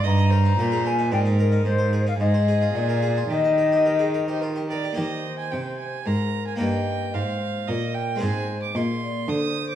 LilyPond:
<<
  \new Staff \with { instrumentName = "Violin" } { \time 3/4 \key ees \major \tempo 4 = 111 ees''8 c''4. bes'4~ | bes'4 aes'2 | g'4 g'8. c''16 bes'8 d''8 | ees''8. aes''16 g''8 aes''8 bes''8. aes''16 |
g''4 f''4 ees''8 g''8 | aes''8. d'''16 c'''4 ees'''8. d'''16 | }
  \new Staff \with { instrumentName = "Flute" } { \time 3/4 \key ees \major bes''4. aes''8 g''8 bes'8 | c''8. f''16 ees''4 d''4 | ees''2 r4 | c''2 bes'4 |
ees''4 c''4 bes'4 | c''4 ees''8 d''8 c''4 | }
  \new Staff \with { instrumentName = "Harpsichord" } { \time 3/4 \key ees \major r16 ees''16 bes'16 ees'16 bes'16 aes'16 bes'16 ees'16 d'16 ees'16 bes'16 ees'16 | r16 c''16 aes'16 ees'16 r16 c''16 aes'16 f'16 r16 bes'16 aes'16 f'16 | r16 ees''16 bes'16 g'16 bes'16 aes'16 bes'16 g'16 f'16 g'16 bes'16 g'16 | <bes ees' g'>2. |
<bes ees' bes'>2. | <aes c' ees' aes'>2. | }
  \new Staff \with { instrumentName = "Harpsichord" } { \clef bass \time 3/4 \key ees \major g,4 bes,4 aes,4 | aes,4 aes,4 bes,4 | ees2~ ees8 r8 | ees4 c4 aes,4 |
g,4 aes,4 bes,4 | aes,4 bes,4 d4 | }
  \new Staff \with { instrumentName = "Cello" } { \clef bass \time 3/4 \key ees \major g,4 bes,4 aes,4 | aes,4 aes,4 bes,4 | ees2~ ees8 r8 | ees4 c4 aes,4 |
g,4 aes,4 bes,4 | aes,4 bes,4 d4 | }
>>